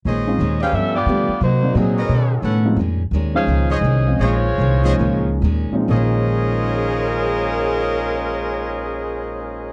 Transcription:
X:1
M:4/4
L:1/8
Q:"Swing" 1/4=159
K:Bbm
V:1 name="Trumpet section"
[Acde]3 [=G_c=d=g]3 z2 | z3 [B_cde]3 [=A=B^c^f]2 | z4 z [Acde] z2 | [Acde] z2 [Acde] z4 |
[Acde]8- | [Acde]8 |]
V:2 name="Saxophone section"
z3 [DAcf] [DF=A=e] [=B,F=G=d]3 | [B,EGc]2 [G,CEA]4 z2 | z3 [DAcf]2 [DAce]3 | [A,Fcd]6 z2 |
[A,DFB]8- | [A,DFB]8 |]
V:3 name="Grand piano"
z [A,CDEF] z4 [=G,=A,=B,=D=G] z | z [G,B,CE=d]3 z3 [F,A,C^C^D] | z3 [F,A,DEc]3 z [F,A,CDF] | z3 [F,A,B,DE]3 z [B,,F,A,CDE] |
[B,,F,A,DEc]8- | [B,,F,A,DEc]8 |]
V:4 name="Steel-string acoustic guitar" clef=bass
[B,,E,A,D] z [B,,E,A,D] z [=G,,F,=B,=D] z [G,,F,B,D] z | [C,G,B,E] z [C,G,B,E] z [=B,,^D,=A,^C] z [B,,D,A,C] z | [B,,E,A,D] z [B,,E,A,D] z [B,,E,A,D] z [B,,E,A,D] z | [B,,E,A,D] z [B,,E,A,D] z [B,,E,A,D] z [B,,E,A,D] z |
[B,,E,A,]8- | [B,,E,A,]8 |]
V:5 name="Upright bass" clef=bass
B,,,2 E,,2 =G,,2 =D, z | C,2 B,,2 =B,,2 =A,,2 | F,,2 E,,2 D,,2 C,,2 | B,,,2 C,,2 D,,2 E,, z |
B,,,8- | B,,,8 |]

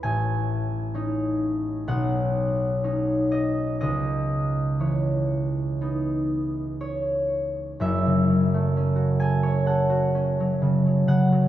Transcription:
X:1
M:4/4
L:1/16
Q:1/4=63
K:C#m
V:1 name="Harp"
[eg]8 f6 d2 | d4 c8 c4 | [K:F#m] e6 g2 f6 f2 |]
V:2 name="Harp"
[A,,,E]4 [CD]4 B,,,4 [CD]4 | C,,4 E,4 [B,D]8 | [K:F#m] [F,,,F,,] C, F, A, C F A c A F C F, C, F, C, F, |]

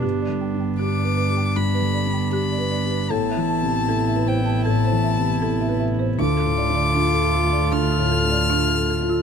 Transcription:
X:1
M:4/4
L:1/16
Q:1/4=78
K:Ddor
V:1 name="Violin"
z4 d'4 b4 b4 | a6 g2 a6 z2 | d'8 f'8 |]
V:2 name="Marimba"
G d g g G d B g G B d g G d d B | A e a a A e c a A c e a A e e c | D A d d D A F d D F A d D A A F |]
V:3 name="Viola"
D16 | E16 | F16 |]
V:4 name="Felt piano"
(3G,,2 D,2 D2 (3G2 B2 G2 (3G,,2 D,2 D2 (3G2 B2 G2 | (3A,,2 E,2 C,2 (3E2 B2 E2 (3A,,2 E,2 C,2 (3E2 B2 E2 | (3D,,2 A,,2 D2 (3F2 A2 F2 (3D,,2 A,,2 D2 (3F2 A2 F2 |]
V:5 name="Cello"
B,16 | B,16 | A,16 |]
V:6 name="Double bass" clef=bass
G,,,16 | A,,,16 | D,,16 |]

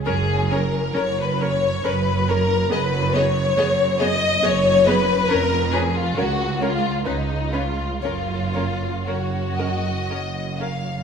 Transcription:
X:1
M:3/4
L:1/16
Q:1/4=68
K:F#
V:1 name="Violin section"
c2 c2 c2 c2 c2 c2 | d2 d2 d2 d2 d2 d2 | c2 c2 c2 c2 c2 c2 | c2 c2 c2 d4 e2 |]
V:2 name="Violin section"
G2 A2 c B c2 B2 A2 | B2 c4 d2 c2 B2 | A2 G E F2 E2 D2 E2 | E4 F6 z2 |]
V:3 name="Viola section"
[CA]2 [CA]2 [CA]2 [CA]2 [CA]2 [CA]2 | [B,G]2 [B,G]2 [B,G]2 [B,G]2 [B,G]2 [B,G]2 | [CB]2 [CB]2 [CA]2 [CA]2 [CB]2 [CB]2 | [CA]2 [CA]2 [CA]2 [CA]2 [CA]2 [CA]2 |]
V:4 name="Cello section" clef=bass
F,,4 F,,4 F,,4 | F,,4 F,,4 F,,4 | E,,4 C,,4 C,,4 | F,,4 F,,4 F,,4 |]
V:5 name="Double bass section" clef=bass
F,,,4 F,,,4 F,,,4 | F,,,4 F,,,4 F,,,4 | E,,,4 C,,4 C,,4 | F,,,4 F,,,4 F,,,4 |]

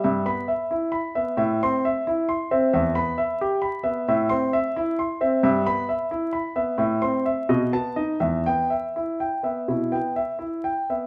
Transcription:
X:1
M:12/8
L:1/8
Q:3/8=88
K:Em
V:1 name="Grand piano"
[G,,e] [B,b] e E b [B,e] [A,,e] [Cc'] e E c' [Ce] | [E,,e] [B,b] e G b [B,e] [A,,e] [Cc'] e E c' [Ce] | [G,,e] [B,b] e E b [B,e] [A,,e] [Cc'] e [B,,^d] [B,a] [^Dd] | [E,,e] [B,g] e E g [B,e] [B,,E] [B,g] e E g [B,e] |]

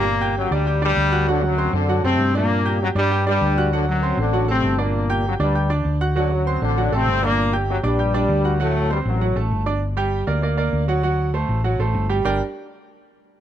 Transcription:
X:1
M:4/4
L:1/8
Q:1/4=197
K:Gm
V:1 name="Grand piano"
z [Ggg']2 [Ddd'] [Ggg'] [Ddd']2 [^F^f^f'] | [^F,^F^f]2 [Ccc']2 [F,Ff] [A,Aa]2 [Ddd']- | [Ddd'] [Ggg']2 [Ddd'] [Ggg'] [Ddd']2 [^F^f^f'] | [^F,^F^f]2 [Ccc']2 [F,Ff] [A,Aa]2 [Ddd']- |
[Ddd'] [Ggg']2 [Ddd'] [Ggg'] [Ddd']2 [^F^f^f'] | [^F,^F^f]2 [Ccc']2 [F,Ff] [A,Aa]2 [Ddd']- | [Ddd'] [Ggg']2 [Ddd'] [Ggg'] [Ddd']2 [^F^f^f'] | [^F,^F^f]2 [Ccc']2 [F,Ff] [A,Aa]2 [Ddd'] |
z [G,Gg]2 [B,Bd] [B,Bd] [B,Bd]2 [^F,^F^f] | [^F,^F^f]2 [A,Ac]2 [F,Ff] [A,Ac]2 [G,Gg] | [G,DGBdg] z6 z |]
V:2 name="Trombone section" clef=bass
[B,,B,]2 [^F,,^F,] [G,,G,]2 [G,,G,]3 | [D,D] [^F,,^F,]2 [D,D]2 [C,C]2 [B,,B,]- | [B,,B,]2 [^F,,^F,] [G,,G,]2 [G,,G,]3 | [D,D] [^F,,^F,]2 [D,D]2 [C,C]2 [B,,B,]- |
[B,,B,]2 [^F,,^F,] [G,,G,]2 z3 | [D,D] [^F,,^F,]2 [D,D]2 [C,C]2 [B,,B,]- | [B,,B,] z [^F,,^F,] [G,,G,]4- [G,,G,] | [A,,A,]2 [G,,G,] [^F,,^F,]2 z3 |
z8 | z8 | z8 |]
V:3 name="Fingered electric bass" clef=bass
G,,,3 D,,3 D,,2- | D,,3 ^F,,2 F,, G,,2- | G,,3 G,,3 D,,2- | D,,3 A,,,3 G,,,2- |
G,,,3 D,,3 D,,2- | D,,3 A,,,2 A,,, G,,,2- | G,,,3 B,,,3 D,,2- | D,,3 A,,,2 A,,, G,,,2- |
G,,,3 D,,3 D,,2- | D,,3 A,,,2 A,,, G,,,2 | G,,, z6 z |]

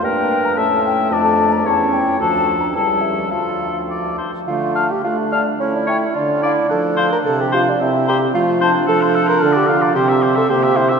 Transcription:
X:1
M:2/4
L:1/16
Q:1/4=110
K:Dm
V:1 name="Flute"
g3 b a2 g2 | a3 b a2 g2 | a3 b a2 e2 | f6 z2 |
z2 a z3 a z | z2 g z3 f z | z2 f z3 f z | z2 b z3 a z |
[K:Cmix] a c' a c' b d' b d' | g c' g c' g c' g c' |]
V:2 name="Oboe"
B4 e4 | d4 ^c4 | A4 A4 | A4 d2 c2 |
z2 f z3 f z | z2 ^c z3 d z | z2 c z3 c z | z2 c z3 c z |
[K:Cmix] A c A c f d f d | c e c e c e c e |]
V:3 name="Bassoon"
G,,4 A,,4 | F,,4 E,,4 | D,,4 ^C,,4 | D,,6 z2 |
F3 G F2 D2 | ^C D E2 D4 | A3 B A G F D | E2 G2 F4 |
[K:Cmix] A3 B A G F2 | G3 A G2 E G |]
V:4 name="Clarinet"
D4 ^C4 | D4 E4 | D4 E4 | F6 z2 |
A,4 D4 | E4 F2 E2 | D8 | C4 A,2 D2- |
[K:Cmix] D8 | C4 B,2 z2 |]
V:5 name="French horn" clef=bass
B,4 A,4- | A,4 ^C4 | F,4 G,4 | F,6 z2 |
D,4 A,4 | A,4 D,4 | F,4 C,4 | C,4 F,4 |
[K:Cmix] F,4 D,4 | C,4 C,4 |]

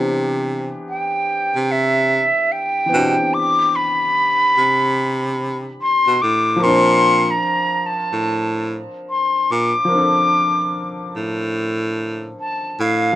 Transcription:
X:1
M:4/4
L:1/16
Q:"Swing 16ths" 1/4=73
K:Bb
V:1 name="Flute"
z4 g4 =e4 g4 | d'2 =b8- b z c'2 d'2 | c'3 b3 a4 z2 c'2 d'2- | d'6 z6 a2 f2 |]
V:2 name="Upright piano"
[=E,=B,CDG]12- [E,B,CDG]2 [E,B,CDG]2- | [=E,=B,CDG]12- [E,B,CDG]2 z2 | [F,CDBc]16 | [F,CDAB]16 |]
V:3 name="Baritone saxophone" clef=bass
C,4 z3 C,4 z3 =B,, z | z6 C,6 z =B,, A,,2 | B,,4 z3 A,,4 z3 B,, z | z6 A,,6 z2 A,,2 |]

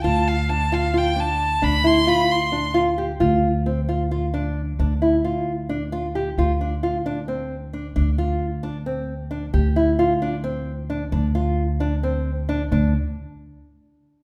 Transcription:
X:1
M:7/8
L:1/8
Q:1/4=133
K:Ddor
V:1 name="Violin"
a f a f g a2 | b c' b c'2 z2 | z6 z | z6 z |
z6 z | z6 z | z6 z | z6 z |
z6 z |]
V:2 name="Nylon-string guitar"
F2 D F F D2 | D E F2 D F G | F2 C F F D2 | D E F2 D F G |
F D F D C2 D | D F2 D C2 D | G E F D C2 D | D F2 D C2 D |
D z6 |]
V:3 name="Upright bass" clef=bass
D,,6- D,, | D,,6- D,, | D,,6- D,, | D,,6- D,, |
D,,6- D,, | D,,6- D,, | D,,6- D,, | D,,6- D,, |
D,, z6 |]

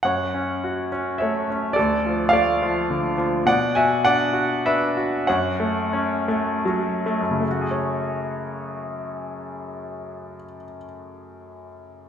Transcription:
X:1
M:3/4
L:1/8
Q:1/4=95
K:F#m
V:1 name="Grand piano"
[cf]3 z [ce]2 | [Ad]2 [d=f]3 z | [df] [eg] [df]2 [Be]2 | [cf]4 z2 |
z6 | z6 |]
V:2 name="Grand piano"
F,, C F C A, C | D,, =F, A, F, D, F, | B,, F D F D F | F,, A, C A, F, A, |
[F,,C,A,FGc]6- | [F,,C,A,FGc]6 |]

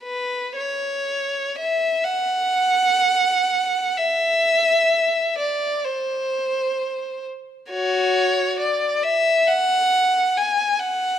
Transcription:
X:1
M:4/4
L:1/8
Q:1/4=64
K:F#m
V:1 name="Violin"
B c2 e f4 | e3 d =c3 z | [Fc]2 d e f2 g f |]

